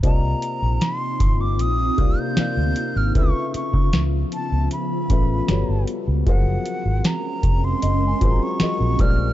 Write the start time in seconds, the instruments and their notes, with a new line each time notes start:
0.03 fingered electric bass C2, felt piano C3 A#3 F4 D5 D#5, ambient pad C3 A#3 C4 D#4 F4, celesta C5, flute A#5, kick, closed hi-hat
0.42 closed hi-hat
0.62 fingered electric bass A#1
0.81 flute C6, snare, closed hi-hat
1.20 fingered electric bass G1, kick, closed hi-hat
1.41 flute D6
1.59 fingered electric bass A#1, flute D#6, closed hi-hat
1.98 fingered electric bass C2, felt piano C3 A#3 F4 D5 F5, celesta G4, kick, closed hi-hat
2.19 celesta A#4, flute G6
2.37 felt piano C3 A#3 F4 D5 F5, muted fingered electric bass stroke, snare, closed hi-hat
2.57 fingered electric bass D2
2.76 closed hi-hat
2.96 fingered electric bass G#1, flute F6
3.15 fingered electric bass C#2, felt piano C#3 E4 A4 B4 E5, ambient pad C#3 F3 B3 E5, celesta B4, flute C#6, kick, closed hi-hat
3.23 felt piano F4
3.39 celesta E5
3.54 flute C#6, muted fingered electric bass stroke, closed hi-hat
3.73 fingered electric bass C#3, kick
3.93 fingered electric bass C#2, snare, closed hi-hat
4.32 flute A5, closed hi-hat
4.52 fingered electric bass C#2
4.71 flute B5, closed hi-hat
5.10 fingered electric bass A1, felt piano C#3 A3 F4 B4 E5, kick, closed hi-hat
5.48 fingered electric bass G1, felt piano G3 F#4 A4 B4 C#5, snare, closed hi-hat
5.69 fingered electric bass G1
5.87 closed hi-hat
6.08 fingered electric bass C#2
6.26 fingered electric bass F#1, felt piano F3 F#3 G#4 A#4 C5, ambient pad G#3 C4 C#4 A#4, flute F#5, kick, closed hi-hat
6.66 closed hi-hat
6.86 fingered electric bass G#1
7.04 flute A#5, snare, closed hi-hat
7.43 fingered electric bass F1, kick, closed hi-hat
7.64 flute C6
7.82 fingered electric bass F#1, celesta D#5, closed hi-hat
8.07 celesta G#5
8.21 fingered electric bass G#1, felt piano F#3 F4 G#4 A#4 C5, kick, closed hi-hat
8.31 celesta A#5
8.43 flute C#6
8.60 felt piano F#3 F4 G#4 A#4 D#5, muted fingered electric bass stroke, snare, closed hi-hat
8.81 fingered electric bass A#1
8.99 fingered electric bass A#1, felt piano A#2 G3 G#3 C5 D5, flute F6, kick, closed hi-hat